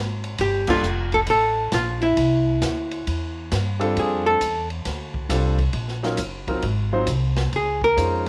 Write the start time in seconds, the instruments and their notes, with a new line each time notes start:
Already playing: upright bass G#1
0.24 ride
0.38 upright bass G1, hollow-body jazz guitar G4, kick, ride
0.67 grand piano G3 A#3 D4 F4 A4, hollow-body jazz guitar F4, kick, crash
0.83 upright bass F1, hi-hat pedal
1.12 hollow-body jazz guitar A4, kick, ride
1.27 upright bass A1, hollow-body jazz guitar A4, kick, ride
1.72 upright bass A#1, hollow-body jazz guitar F4, kick, snare, hi-hat pedal, ride
2.02 hollow-body jazz guitar E4, ride
2.17 upright bass C2, kick, ride
2.62 upright bass D2, kick, snare, hi-hat pedal, ride
2.91 ride
3.07 upright bass E2, kick, ride
3.52 upright bass G2, kick, snare, hi-hat pedal, ride
3.79 grand piano G3 C4 D4 F4 A4, ride
3.96 upright bass F2, hollow-body jazz guitar G#4, kick, ride
4.26 hollow-body jazz guitar A4
4.41 upright bass E2, kick, hi-hat pedal, ride
4.70 ride
4.85 upright bass D2, kick, snare, ride
5.14 kick
5.29 upright bass C2, grand piano G3 C4 D4 F4 A4, kick, snare, hi-hat pedal, ride
5.58 kick, ride
5.73 upright bass A#1, kick, ride
5.88 snare
6.03 grand piano F#3 C#4 D#4 F4 A#4, snare
6.17 upright bass F#1, kick, hi-hat pedal, ride
6.47 grand piano F#3 C4 D#4 F4 A#4, kick, ride
6.62 upright bass G#1, kick, ride
6.93 grand piano F#3 C4 D#4 F4 C5
7.07 upright bass C2, kick, hi-hat pedal, ride
7.36 snare, ride
7.52 upright bass C#2, hollow-body jazz guitar G#4, kick, ride
7.82 hollow-body jazz guitar A#4, kick
7.97 upright bass F2, grand piano G#3 C#4 D#4 F4 C5, kick, hi-hat pedal, ride